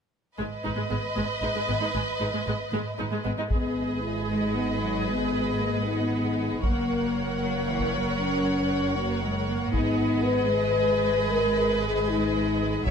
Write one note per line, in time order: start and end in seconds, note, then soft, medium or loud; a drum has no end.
0.39 0.45 G#1 soft
0.39 0.44 G#2 soft
0.39 0.45 G#3 soft
0.39 3.27 B4 soft
0.39 3.27 D#5 soft
0.65 0.71 G#1 soft
0.65 0.70 G#2 soft
0.65 0.70 G#3 soft
0.65 0.70 D#4 soft
0.77 0.83 G#2 soft
0.77 0.82 G#3 soft
0.90 0.96 G#1 soft
0.90 0.96 G#2 soft
0.90 0.96 G#3 soft
0.90 0.96 B3 soft
1.16 1.22 G#1 soft
1.16 1.22 G#2 soft
1.16 1.22 G#3 soft
1.42 1.48 G#1 soft
1.42 1.49 G#2 soft
1.42 1.48 G#3 soft
1.42 1.48 D#4 soft
1.55 1.61 G#2 soft
1.55 1.61 G#3 soft
1.68 1.74 G#1 soft
1.68 1.74 G#2 soft
1.68 1.74 G#3 soft
1.68 1.74 B3 soft
1.81 1.87 G#2 soft
1.81 1.86 G#3 soft
1.81 1.86 D#4 soft
1.94 2.00 G#1 soft
1.94 2.00 G#2 soft
1.94 2.00 G#3 soft
2.20 2.26 G#1 soft
2.20 2.26 G#2 soft
2.20 2.26 G#3 soft
2.20 2.26 D#4 soft
2.34 2.39 G#2 soft
2.34 2.39 G#3 soft
2.47 2.52 G#1 soft
2.47 2.52 G#2 soft
2.47 2.53 G#3 soft
2.47 2.53 B3 soft
2.73 2.78 G#1 soft
2.73 2.78 G#2 medium
2.73 2.79 G#3 medium
2.99 3.04 G#1 soft
2.99 3.04 G#2 soft
2.99 3.04 G#3 soft
2.99 3.04 D#4 soft
3.12 3.17 G#2 soft
3.12 3.18 G#3 medium
3.25 3.30 G#1 soft
3.25 3.30 G#2 soft
3.25 3.30 G#3 soft
3.25 3.30 B3 soft
3.38 3.43 G#2 soft
3.38 3.43 G#3 soft
3.38 3.43 D#4 soft
3.50 6.59 G#1 soft
3.50 4.00 B3 soft
3.50 6.58 G#4 soft
3.50 6.59 B4 soft
3.50 6.59 D#5 soft
3.50 taiko soft
4.01 4.28 E4 soft
4.29 4.53 G#3 soft
4.29 5.07 D#4 soft
4.55 4.81 B3 soft
4.81 5.07 F#3 soft
5.07 5.85 G#3 soft
5.07 5.58 B3 soft
5.59 5.85 A#3 soft
5.84 6.63 B3 soft
5.84 6.62 D#4 medium
6.63 9.71 F#1 soft
6.63 7.39 A#3 soft
6.63 8.17 A#3 medium
6.63 9.70 A#4 soft
6.63 9.71 C#5 soft
6.63 9.71 F#5 soft
6.63 taiko soft
7.41 7.66 F#3 soft
7.67 7.92 E3 soft
7.80 taiko soft
7.93 8.97 F#3 soft
8.19 8.95 C#4 medium
8.96 9.22 A#3 medium
8.96 9.22 F#4 medium
9.22 9.48 G#3 soft
9.48 9.74 A#3 soft
9.72 12.82 G#1 soft
9.72 10.52 B3 medium
9.72 10.21 D#4 medium
9.72 12.82 G#4 soft
9.72 12.82 B4 medium
9.72 12.82 D#5 soft
9.72 taiko soft
10.24 11.29 B4 medium
10.52 12.82 G#3 medium
11.29 11.81 A#4 medium
11.83 12.08 G#4 medium
12.09 12.87 D#4 medium
12.86 12.91 A#1 soft
12.86 12.91 F#3 medium
12.86 12.91 A#3 medium
12.86 12.91 C#5 medium
12.86 12.91 E5 soft
12.86 12.91 E5 medium
12.86 taiko soft